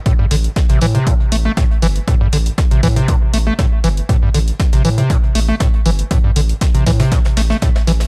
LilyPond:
<<
  \new Staff \with { instrumentName = "Acid bass" } { \clef bass \time 4/4 \key a \minor \tempo 4 = 119 a,16 g,16 d16 r8 c16 e16 c16 a,16 r16 a16 a16 a,16 r16 e16 r16 | a,16 g,16 d16 r8 c16 e16 c16 a,16 r16 a16 a16 a,16 r16 e16 r16 | a,16 g,16 d16 r8 c16 e16 c16 a,16 r16 a16 a16 a,16 r16 e16 r16 | a,16 g,16 d16 r8 c16 e16 c16 a,16 r16 a16 a16 a,16 r16 e16 r16 | }
  \new Staff \with { instrumentName = "Sub bass" } { \clef bass \time 4/4 \key a \minor r8 a,,16 r8 a,,16 a,16 r8. a,,16 r8. g,,16 r16 | r8 a,,16 r8 a,,16 a,16 r8. a,,16 r8. g,,16 r16 | r8 a,,16 r8 a,,16 a,16 r8. a,,16 r8. g,,16 r16 | r8 a,,16 r8 a,,16 a,16 r8. a,,16 r8. a,,16 r16 | }
  \new DrumStaff \with { instrumentName = "Drums" } \drummode { \time 4/4 <hh bd>8 <hh hho>16 hh16 <hh bd sn>16 <hh sn>16 <hh hho>16 hh16 <hh bd>16 hh16 <hh hho>8 <hh bd sn>16 hh16 <hh hho>16 hh16 | <hh bd>8 <hh hho>16 hh16 <hh bd sn>16 hh16 <hh hho bd>16 hh16 <hh bd>8 <hh hho>8 <hh bd sn>8 <hh hho sn>16 hh16 | <hh bd>8 <hh hho>16 hh16 <hh bd sn>16 <hh sn>16 <hh hho>16 hh16 <hh bd>16 hh16 <hh hho>8 <hh bd sn>16 hh16 <hh hho>16 hh16 | <hh bd>8 <hh hho>16 hh16 <hh bd sn>16 hh16 <hh hho bd sn>16 <hh sn>16 <hh bd sn>16 <hh sn>16 <hh hho sn>16 <hh sn>16 <hh bd sn>16 <hh sn>16 <hh hho sn>16 <hh sn>16 | }
>>